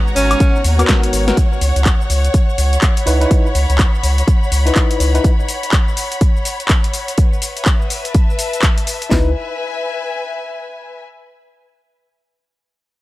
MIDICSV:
0, 0, Header, 1, 7, 480
1, 0, Start_track
1, 0, Tempo, 483871
1, 1361, Time_signature, 4, 2, 24, 8
1, 12912, End_track
2, 0, Start_track
2, 0, Title_t, "String section"
2, 0, Program_c, 0, 48
2, 0, Note_on_c, 0, 73, 99
2, 0, Note_on_c, 0, 78, 75
2, 0, Note_on_c, 0, 82, 100
2, 1361, Note_off_c, 0, 82, 0
2, 2726, Note_on_c, 0, 83, 90
2, 7119, Note_on_c, 0, 71, 82
2, 7443, Note_on_c, 0, 76, 74
2, 7801, Note_off_c, 0, 83, 0
2, 7813, Note_off_c, 0, 78, 0
2, 7898, Note_off_c, 0, 73, 0
2, 8003, Note_on_c, 0, 81, 72
2, 9027, Note_off_c, 0, 71, 0
2, 9039, Note_on_c, 0, 71, 76
2, 9040, Note_off_c, 0, 81, 0
2, 9041, Note_off_c, 0, 76, 0
2, 9125, Note_on_c, 0, 76, 74
2, 9203, Note_on_c, 0, 80, 79
2, 10919, Note_off_c, 0, 76, 0
2, 10920, Note_off_c, 0, 71, 0
2, 10920, Note_off_c, 0, 80, 0
2, 12912, End_track
3, 0, Start_track
3, 0, Title_t, "Tine electric piano"
3, 0, Program_c, 1, 4
3, 779, Note_on_c, 1, 59, 95
3, 784, Note_on_c, 1, 66, 85
3, 789, Note_on_c, 1, 70, 101
3, 1228, Note_off_c, 1, 59, 0
3, 1230, Note_off_c, 1, 66, 0
3, 1233, Note_off_c, 1, 70, 0
3, 1260, Note_on_c, 1, 59, 93
3, 1265, Note_on_c, 1, 66, 88
3, 1270, Note_on_c, 1, 70, 101
3, 1346, Note_off_c, 1, 59, 0
3, 1349, Note_off_c, 1, 66, 0
3, 1351, Note_off_c, 1, 70, 0
3, 3035, Note_on_c, 1, 63, 84
3, 3041, Note_on_c, 1, 64, 81
3, 3046, Note_on_c, 1, 71, 97
3, 3162, Note_off_c, 1, 63, 0
3, 3165, Note_off_c, 1, 64, 0
3, 3168, Note_off_c, 1, 71, 0
3, 3181, Note_on_c, 1, 63, 77
3, 3186, Note_on_c, 1, 64, 70
3, 3191, Note_on_c, 1, 71, 86
3, 3443, Note_off_c, 1, 63, 0
3, 3446, Note_off_c, 1, 64, 0
3, 3448, Note_off_c, 1, 71, 0
3, 4621, Note_on_c, 1, 63, 86
3, 4626, Note_on_c, 1, 64, 78
3, 4631, Note_on_c, 1, 71, 94
3, 5069, Note_off_c, 1, 63, 0
3, 5071, Note_off_c, 1, 64, 0
3, 5074, Note_off_c, 1, 71, 0
3, 5101, Note_on_c, 1, 63, 87
3, 5107, Note_on_c, 1, 64, 78
3, 5112, Note_on_c, 1, 71, 100
3, 5254, Note_off_c, 1, 63, 0
3, 5256, Note_off_c, 1, 64, 0
3, 5259, Note_off_c, 1, 71, 0
3, 9022, Note_on_c, 1, 63, 85
3, 9039, Note_on_c, 1, 64, 79
3, 9055, Note_on_c, 1, 71, 94
3, 9219, Note_off_c, 1, 63, 0
3, 9228, Note_off_c, 1, 64, 0
3, 9236, Note_off_c, 1, 71, 0
3, 12912, End_track
4, 0, Start_track
4, 0, Title_t, "Alto saxophone"
4, 0, Program_c, 2, 65
4, 158, Note_on_c, 2, 61, 99
4, 639, Note_off_c, 2, 61, 0
4, 12912, End_track
5, 0, Start_track
5, 0, Title_t, "Analog synth pad"
5, 0, Program_c, 3, 89
5, 0, Note_on_c, 3, 56, 81
5, 0, Note_on_c, 3, 59, 87
5, 0, Note_on_c, 3, 63, 74
5, 0, Note_on_c, 3, 66, 73
5, 1320, Note_off_c, 3, 56, 0
5, 1321, Note_off_c, 3, 59, 0
5, 1321, Note_off_c, 3, 63, 0
5, 1321, Note_off_c, 3, 66, 0
5, 12912, End_track
6, 0, Start_track
6, 0, Title_t, "Analog synth bass"
6, 0, Program_c, 4, 38
6, 160, Note_on_c, 4, 32, 83
6, 349, Note_off_c, 4, 32, 0
6, 640, Note_on_c, 4, 39, 87
6, 829, Note_off_c, 4, 39, 0
6, 1121, Note_on_c, 4, 32, 86
6, 1310, Note_off_c, 4, 32, 0
6, 1601, Note_on_c, 4, 37, 99
6, 1707, Note_off_c, 4, 37, 0
6, 1748, Note_on_c, 4, 37, 93
6, 1908, Note_off_c, 4, 37, 0
6, 2081, Note_on_c, 4, 37, 76
6, 2270, Note_off_c, 4, 37, 0
6, 2561, Note_on_c, 4, 37, 78
6, 2750, Note_off_c, 4, 37, 0
6, 3042, Note_on_c, 4, 37, 85
6, 3230, Note_off_c, 4, 37, 0
6, 3523, Note_on_c, 4, 37, 97
6, 3628, Note_off_c, 4, 37, 0
6, 3668, Note_on_c, 4, 37, 91
6, 3828, Note_off_c, 4, 37, 0
6, 4002, Note_on_c, 4, 37, 79
6, 4190, Note_off_c, 4, 37, 0
6, 4481, Note_on_c, 4, 37, 81
6, 4670, Note_off_c, 4, 37, 0
6, 4961, Note_on_c, 4, 37, 84
6, 5150, Note_off_c, 4, 37, 0
6, 9041, Note_on_c, 4, 37, 98
6, 9264, Note_off_c, 4, 37, 0
6, 12912, End_track
7, 0, Start_track
7, 0, Title_t, "Drums"
7, 73, Note_on_c, 9, 82, 24
7, 159, Note_on_c, 9, 46, 99
7, 167, Note_off_c, 9, 82, 0
7, 167, Note_on_c, 9, 82, 80
7, 258, Note_off_c, 9, 46, 0
7, 266, Note_off_c, 9, 82, 0
7, 306, Note_on_c, 9, 42, 57
7, 306, Note_on_c, 9, 76, 85
7, 313, Note_on_c, 9, 82, 36
7, 399, Note_off_c, 9, 42, 0
7, 399, Note_on_c, 9, 42, 70
7, 401, Note_on_c, 9, 36, 123
7, 405, Note_off_c, 9, 76, 0
7, 407, Note_off_c, 9, 82, 0
7, 407, Note_on_c, 9, 82, 45
7, 498, Note_off_c, 9, 42, 0
7, 500, Note_off_c, 9, 36, 0
7, 506, Note_off_c, 9, 82, 0
7, 554, Note_on_c, 9, 82, 24
7, 639, Note_on_c, 9, 46, 106
7, 647, Note_off_c, 9, 82, 0
7, 647, Note_on_c, 9, 82, 83
7, 738, Note_off_c, 9, 46, 0
7, 746, Note_off_c, 9, 82, 0
7, 786, Note_on_c, 9, 42, 60
7, 786, Note_on_c, 9, 76, 66
7, 794, Note_on_c, 9, 82, 38
7, 874, Note_on_c, 9, 39, 124
7, 880, Note_off_c, 9, 42, 0
7, 880, Note_on_c, 9, 38, 119
7, 880, Note_on_c, 9, 42, 75
7, 881, Note_on_c, 9, 36, 117
7, 885, Note_off_c, 9, 76, 0
7, 888, Note_off_c, 9, 82, 0
7, 888, Note_on_c, 9, 82, 50
7, 973, Note_off_c, 9, 39, 0
7, 979, Note_off_c, 9, 38, 0
7, 979, Note_off_c, 9, 42, 0
7, 980, Note_off_c, 9, 36, 0
7, 987, Note_off_c, 9, 82, 0
7, 1026, Note_on_c, 9, 42, 68
7, 1034, Note_on_c, 9, 82, 24
7, 1121, Note_on_c, 9, 46, 106
7, 1125, Note_off_c, 9, 42, 0
7, 1128, Note_off_c, 9, 82, 0
7, 1128, Note_on_c, 9, 82, 83
7, 1220, Note_off_c, 9, 46, 0
7, 1228, Note_off_c, 9, 82, 0
7, 1267, Note_on_c, 9, 38, 79
7, 1267, Note_on_c, 9, 42, 57
7, 1275, Note_on_c, 9, 82, 36
7, 1361, Note_off_c, 9, 42, 0
7, 1361, Note_on_c, 9, 36, 117
7, 1361, Note_on_c, 9, 42, 69
7, 1367, Note_off_c, 9, 38, 0
7, 1369, Note_off_c, 9, 82, 0
7, 1369, Note_on_c, 9, 82, 45
7, 1460, Note_off_c, 9, 36, 0
7, 1460, Note_off_c, 9, 42, 0
7, 1468, Note_off_c, 9, 82, 0
7, 1515, Note_on_c, 9, 82, 23
7, 1601, Note_on_c, 9, 46, 101
7, 1609, Note_off_c, 9, 82, 0
7, 1609, Note_on_c, 9, 82, 74
7, 1700, Note_off_c, 9, 46, 0
7, 1708, Note_off_c, 9, 82, 0
7, 1748, Note_on_c, 9, 42, 54
7, 1756, Note_on_c, 9, 82, 32
7, 1837, Note_on_c, 9, 39, 120
7, 1841, Note_on_c, 9, 36, 119
7, 1842, Note_off_c, 9, 42, 0
7, 1842, Note_on_c, 9, 42, 66
7, 1850, Note_off_c, 9, 82, 0
7, 1850, Note_on_c, 9, 82, 44
7, 1936, Note_off_c, 9, 39, 0
7, 1941, Note_off_c, 9, 36, 0
7, 1942, Note_off_c, 9, 42, 0
7, 1949, Note_off_c, 9, 82, 0
7, 1995, Note_on_c, 9, 82, 23
7, 2082, Note_on_c, 9, 46, 98
7, 2090, Note_off_c, 9, 82, 0
7, 2090, Note_on_c, 9, 82, 75
7, 2181, Note_off_c, 9, 46, 0
7, 2189, Note_off_c, 9, 82, 0
7, 2227, Note_on_c, 9, 42, 56
7, 2235, Note_on_c, 9, 82, 34
7, 2321, Note_off_c, 9, 42, 0
7, 2321, Note_on_c, 9, 42, 66
7, 2322, Note_on_c, 9, 36, 112
7, 2329, Note_off_c, 9, 82, 0
7, 2329, Note_on_c, 9, 82, 44
7, 2420, Note_off_c, 9, 42, 0
7, 2421, Note_off_c, 9, 36, 0
7, 2428, Note_off_c, 9, 82, 0
7, 2475, Note_on_c, 9, 82, 23
7, 2561, Note_on_c, 9, 46, 105
7, 2569, Note_off_c, 9, 82, 0
7, 2569, Note_on_c, 9, 82, 78
7, 2660, Note_off_c, 9, 46, 0
7, 2668, Note_off_c, 9, 82, 0
7, 2707, Note_on_c, 9, 42, 58
7, 2715, Note_on_c, 9, 82, 34
7, 2795, Note_on_c, 9, 39, 126
7, 2801, Note_off_c, 9, 42, 0
7, 2801, Note_on_c, 9, 42, 71
7, 2802, Note_on_c, 9, 36, 113
7, 2809, Note_off_c, 9, 82, 0
7, 2809, Note_on_c, 9, 82, 45
7, 2894, Note_off_c, 9, 39, 0
7, 2900, Note_off_c, 9, 42, 0
7, 2901, Note_off_c, 9, 36, 0
7, 2908, Note_off_c, 9, 82, 0
7, 2947, Note_on_c, 9, 42, 66
7, 2955, Note_on_c, 9, 82, 23
7, 3043, Note_on_c, 9, 46, 104
7, 3046, Note_off_c, 9, 42, 0
7, 3050, Note_off_c, 9, 82, 0
7, 3050, Note_on_c, 9, 82, 80
7, 3142, Note_off_c, 9, 46, 0
7, 3150, Note_off_c, 9, 82, 0
7, 3188, Note_on_c, 9, 42, 54
7, 3196, Note_on_c, 9, 82, 32
7, 3282, Note_off_c, 9, 42, 0
7, 3282, Note_on_c, 9, 36, 125
7, 3282, Note_on_c, 9, 42, 65
7, 3290, Note_off_c, 9, 82, 0
7, 3290, Note_on_c, 9, 82, 44
7, 3381, Note_off_c, 9, 36, 0
7, 3381, Note_off_c, 9, 42, 0
7, 3389, Note_off_c, 9, 82, 0
7, 3436, Note_on_c, 9, 82, 22
7, 3522, Note_on_c, 9, 46, 108
7, 3530, Note_off_c, 9, 82, 0
7, 3530, Note_on_c, 9, 82, 72
7, 3621, Note_off_c, 9, 46, 0
7, 3629, Note_off_c, 9, 82, 0
7, 3668, Note_on_c, 9, 42, 52
7, 3675, Note_on_c, 9, 82, 31
7, 3756, Note_on_c, 9, 39, 124
7, 3762, Note_off_c, 9, 42, 0
7, 3762, Note_on_c, 9, 36, 124
7, 3762, Note_on_c, 9, 42, 66
7, 3770, Note_off_c, 9, 82, 0
7, 3770, Note_on_c, 9, 82, 43
7, 3856, Note_off_c, 9, 39, 0
7, 3861, Note_off_c, 9, 36, 0
7, 3861, Note_off_c, 9, 42, 0
7, 3869, Note_off_c, 9, 82, 0
7, 3916, Note_on_c, 9, 82, 21
7, 4002, Note_on_c, 9, 46, 108
7, 4010, Note_off_c, 9, 82, 0
7, 4010, Note_on_c, 9, 82, 71
7, 4102, Note_off_c, 9, 46, 0
7, 4109, Note_off_c, 9, 82, 0
7, 4148, Note_on_c, 9, 42, 54
7, 4156, Note_on_c, 9, 82, 33
7, 4241, Note_on_c, 9, 36, 120
7, 4242, Note_off_c, 9, 42, 0
7, 4242, Note_on_c, 9, 42, 64
7, 4250, Note_off_c, 9, 82, 0
7, 4250, Note_on_c, 9, 82, 40
7, 4341, Note_off_c, 9, 36, 0
7, 4342, Note_off_c, 9, 42, 0
7, 4349, Note_off_c, 9, 82, 0
7, 4397, Note_on_c, 9, 82, 22
7, 4483, Note_on_c, 9, 46, 109
7, 4490, Note_off_c, 9, 82, 0
7, 4490, Note_on_c, 9, 82, 76
7, 4582, Note_off_c, 9, 46, 0
7, 4590, Note_off_c, 9, 82, 0
7, 4629, Note_on_c, 9, 42, 55
7, 4637, Note_on_c, 9, 82, 33
7, 4717, Note_on_c, 9, 39, 122
7, 4722, Note_on_c, 9, 36, 112
7, 4723, Note_off_c, 9, 42, 0
7, 4723, Note_on_c, 9, 42, 66
7, 4730, Note_off_c, 9, 82, 0
7, 4730, Note_on_c, 9, 82, 43
7, 4816, Note_off_c, 9, 39, 0
7, 4821, Note_off_c, 9, 36, 0
7, 4822, Note_off_c, 9, 42, 0
7, 4830, Note_off_c, 9, 82, 0
7, 4867, Note_on_c, 9, 42, 63
7, 4875, Note_on_c, 9, 82, 21
7, 4962, Note_on_c, 9, 46, 108
7, 4966, Note_off_c, 9, 42, 0
7, 4969, Note_off_c, 9, 82, 0
7, 4969, Note_on_c, 9, 82, 74
7, 5061, Note_off_c, 9, 46, 0
7, 5069, Note_off_c, 9, 82, 0
7, 5108, Note_on_c, 9, 42, 51
7, 5116, Note_on_c, 9, 82, 32
7, 5202, Note_off_c, 9, 42, 0
7, 5202, Note_on_c, 9, 36, 121
7, 5202, Note_on_c, 9, 42, 65
7, 5210, Note_off_c, 9, 82, 0
7, 5210, Note_on_c, 9, 82, 45
7, 5301, Note_off_c, 9, 36, 0
7, 5301, Note_off_c, 9, 42, 0
7, 5309, Note_off_c, 9, 82, 0
7, 5355, Note_on_c, 9, 82, 21
7, 5441, Note_on_c, 9, 46, 107
7, 5449, Note_off_c, 9, 82, 0
7, 5449, Note_on_c, 9, 82, 74
7, 5540, Note_off_c, 9, 46, 0
7, 5548, Note_off_c, 9, 82, 0
7, 5588, Note_on_c, 9, 42, 52
7, 5596, Note_on_c, 9, 82, 31
7, 5676, Note_on_c, 9, 39, 125
7, 5681, Note_off_c, 9, 42, 0
7, 5681, Note_on_c, 9, 42, 62
7, 5682, Note_on_c, 9, 36, 127
7, 5689, Note_off_c, 9, 82, 0
7, 5689, Note_on_c, 9, 82, 41
7, 5775, Note_off_c, 9, 39, 0
7, 5780, Note_off_c, 9, 42, 0
7, 5781, Note_off_c, 9, 36, 0
7, 5788, Note_off_c, 9, 82, 0
7, 5835, Note_on_c, 9, 82, 22
7, 5921, Note_on_c, 9, 46, 109
7, 5929, Note_off_c, 9, 82, 0
7, 5929, Note_on_c, 9, 82, 72
7, 6020, Note_off_c, 9, 46, 0
7, 6028, Note_off_c, 9, 82, 0
7, 6068, Note_on_c, 9, 42, 54
7, 6076, Note_on_c, 9, 82, 33
7, 6161, Note_off_c, 9, 42, 0
7, 6161, Note_on_c, 9, 42, 62
7, 6162, Note_on_c, 9, 36, 123
7, 6168, Note_off_c, 9, 82, 0
7, 6168, Note_on_c, 9, 82, 43
7, 6260, Note_off_c, 9, 42, 0
7, 6261, Note_off_c, 9, 36, 0
7, 6268, Note_off_c, 9, 82, 0
7, 6315, Note_on_c, 9, 82, 21
7, 6401, Note_on_c, 9, 46, 112
7, 6409, Note_off_c, 9, 82, 0
7, 6409, Note_on_c, 9, 82, 77
7, 6500, Note_off_c, 9, 46, 0
7, 6508, Note_off_c, 9, 82, 0
7, 6547, Note_on_c, 9, 42, 50
7, 6555, Note_on_c, 9, 82, 34
7, 6635, Note_on_c, 9, 39, 120
7, 6640, Note_off_c, 9, 42, 0
7, 6640, Note_on_c, 9, 42, 67
7, 6642, Note_on_c, 9, 36, 120
7, 6648, Note_off_c, 9, 82, 0
7, 6648, Note_on_c, 9, 82, 44
7, 6734, Note_off_c, 9, 39, 0
7, 6740, Note_off_c, 9, 42, 0
7, 6741, Note_off_c, 9, 36, 0
7, 6747, Note_off_c, 9, 82, 0
7, 6787, Note_on_c, 9, 42, 62
7, 6795, Note_on_c, 9, 82, 21
7, 6879, Note_on_c, 9, 46, 108
7, 6886, Note_off_c, 9, 42, 0
7, 6887, Note_off_c, 9, 82, 0
7, 6887, Note_on_c, 9, 82, 77
7, 6979, Note_off_c, 9, 46, 0
7, 6986, Note_off_c, 9, 82, 0
7, 7026, Note_on_c, 9, 42, 53
7, 7034, Note_on_c, 9, 82, 33
7, 7119, Note_off_c, 9, 42, 0
7, 7119, Note_on_c, 9, 42, 66
7, 7122, Note_on_c, 9, 36, 116
7, 7127, Note_off_c, 9, 82, 0
7, 7127, Note_on_c, 9, 82, 43
7, 7218, Note_off_c, 9, 42, 0
7, 7221, Note_off_c, 9, 36, 0
7, 7226, Note_off_c, 9, 82, 0
7, 7273, Note_on_c, 9, 82, 22
7, 7359, Note_on_c, 9, 46, 109
7, 7367, Note_off_c, 9, 82, 0
7, 7367, Note_on_c, 9, 82, 76
7, 7458, Note_off_c, 9, 46, 0
7, 7466, Note_off_c, 9, 82, 0
7, 7505, Note_on_c, 9, 42, 48
7, 7513, Note_on_c, 9, 82, 32
7, 7594, Note_on_c, 9, 39, 115
7, 7600, Note_off_c, 9, 42, 0
7, 7600, Note_on_c, 9, 42, 63
7, 7601, Note_on_c, 9, 36, 119
7, 7608, Note_off_c, 9, 82, 0
7, 7608, Note_on_c, 9, 82, 43
7, 7693, Note_off_c, 9, 39, 0
7, 7699, Note_off_c, 9, 42, 0
7, 7700, Note_off_c, 9, 36, 0
7, 7707, Note_off_c, 9, 82, 0
7, 7753, Note_on_c, 9, 82, 22
7, 7839, Note_on_c, 9, 46, 110
7, 7847, Note_off_c, 9, 82, 0
7, 7847, Note_on_c, 9, 82, 72
7, 7938, Note_off_c, 9, 46, 0
7, 7946, Note_off_c, 9, 82, 0
7, 7986, Note_on_c, 9, 42, 52
7, 7993, Note_on_c, 9, 82, 33
7, 8080, Note_off_c, 9, 42, 0
7, 8080, Note_on_c, 9, 42, 60
7, 8081, Note_on_c, 9, 36, 127
7, 8087, Note_off_c, 9, 82, 0
7, 8087, Note_on_c, 9, 82, 43
7, 8179, Note_off_c, 9, 42, 0
7, 8180, Note_off_c, 9, 36, 0
7, 8187, Note_off_c, 9, 82, 0
7, 8234, Note_on_c, 9, 82, 22
7, 8320, Note_on_c, 9, 46, 113
7, 8327, Note_off_c, 9, 82, 0
7, 8327, Note_on_c, 9, 82, 75
7, 8419, Note_off_c, 9, 46, 0
7, 8427, Note_off_c, 9, 82, 0
7, 8466, Note_on_c, 9, 42, 52
7, 8474, Note_on_c, 9, 82, 33
7, 8554, Note_on_c, 9, 39, 123
7, 8560, Note_off_c, 9, 42, 0
7, 8560, Note_on_c, 9, 42, 64
7, 8561, Note_on_c, 9, 36, 115
7, 8568, Note_off_c, 9, 82, 0
7, 8568, Note_on_c, 9, 82, 44
7, 8654, Note_off_c, 9, 39, 0
7, 8659, Note_off_c, 9, 42, 0
7, 8660, Note_off_c, 9, 36, 0
7, 8667, Note_off_c, 9, 82, 0
7, 8706, Note_on_c, 9, 42, 61
7, 8714, Note_on_c, 9, 82, 22
7, 8799, Note_on_c, 9, 46, 107
7, 8805, Note_off_c, 9, 42, 0
7, 8807, Note_off_c, 9, 82, 0
7, 8807, Note_on_c, 9, 82, 76
7, 8898, Note_off_c, 9, 46, 0
7, 8906, Note_off_c, 9, 82, 0
7, 8946, Note_on_c, 9, 42, 51
7, 8954, Note_on_c, 9, 82, 33
7, 9041, Note_on_c, 9, 36, 102
7, 9041, Note_on_c, 9, 38, 103
7, 9045, Note_off_c, 9, 42, 0
7, 9053, Note_off_c, 9, 82, 0
7, 9140, Note_off_c, 9, 36, 0
7, 9140, Note_off_c, 9, 38, 0
7, 12912, End_track
0, 0, End_of_file